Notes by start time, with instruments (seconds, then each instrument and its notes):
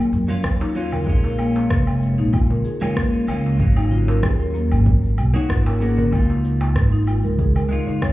Already playing: clean electric guitar F4
0.13 upright bass F#2, cabasa
0.28 clean electric guitar F#3 A#3 C#4 F4, cabasa
0.44 upright bass D#2, kick, cross-stick, cabasa, low woodblock
0.60 marimba D#4, darbuka ka, darbuka tek, cabasa
0.75 clean electric guitar F#3 A#3 C#4 F4, marimba F4, cabasa
0.92 marimba A#4, darbuka dum, cabasa, low woodblock
1.06 upright bass A#1, clean electric guitar G#3 A#3 C#4 F4, marimba G#4, kick, cabasa
1.24 marimba A#4, darbuka tek, cabasa
1.38 marimba A#3, darbuka ka, cabasa, low woodblock
1.56 darbuka tek, cabasa
1.70 upright bass F1, kick, cross-stick, darbuka tek, cabasa
1.87 cabasa, low woodblock
2.02 cabasa
2.18 upright bass A#1, marimba D#4, cabasa
2.33 marimba F4, kick, cabasa, low woodblock
2.50 marimba A#4, darbuka dum, cabasa
2.65 marimba G#4, cabasa
2.81 clean electric guitar G#3 A#3 C#4 F4, marimba A#4, darbuka dum, cabasa, low woodblock
2.96 marimba A#3, kick, cross-stick, cabasa
3.14 cabasa
3.27 upright bass C#2, clean electric guitar G#3 A#3 C#4 F4, darbuka ka, cabasa, low woodblock
3.45 darbuka tek, cabasa
3.58 upright bass G#1, clean electric guitar A#3 C#4, kick, cabasa
3.62 clean electric guitar F#3
3.76 marimba D#4, darbuka tek, cabasa, low woodblock
3.91 marimba F4, darbuka ka, darbuka dum, cabasa
4.08 marimba A#4, darbuka tek, cabasa
4.23 upright bass D#2, marimba G#4, kick, cross-stick, cabasa, low woodblock
4.39 marimba A#4, cabasa
4.54 marimba A#3, cabasa
4.71 upright bass G#1, cabasa, low woodblock
4.86 kick, cabasa
5.04 cabasa
5.18 upright bass B1, cabasa, low woodblock
5.34 clean electric guitar A#3 C#4 F#4, marimba D#4, cabasa
5.49 upright bass G#1, marimba F4, kick, cross-stick, cabasa
5.66 marimba A#4, darbuka ka, darbuka tek, cabasa, low woodblock
5.80 clean electric guitar A#3 B3 C#4 F#4, marimba G#4, cabasa
5.98 marimba A#4, darbuka dum, cabasa
6.11 upright bass C#2, clean electric guitar G#3 D#4, marimba A#3, kick, cabasa, low woodblock
6.15 clean electric guitar F4
6.30 darbuka tek, cabasa
6.44 darbuka ka, cabasa
6.61 darbuka tek, cabasa, low woodblock
6.76 upright bass G#1, kick, cross-stick, darbuka tek, cabasa
6.92 marimba D#4, cabasa
7.07 marimba F4, cabasa, low woodblock
7.24 upright bass C#2, marimba A#4, cabasa
7.39 marimba G#4, kick, cabasa
7.56 marimba A#4, darbuka dum, cabasa, low woodblock
7.69 clean electric guitar G#3 D#4 F4, marimba D#4, darbuka tek, cabasa
7.87 marimba D#4, darbuka dum, cabasa
8.02 marimba C#5, kick, cross-stick, cabasa, low woodblock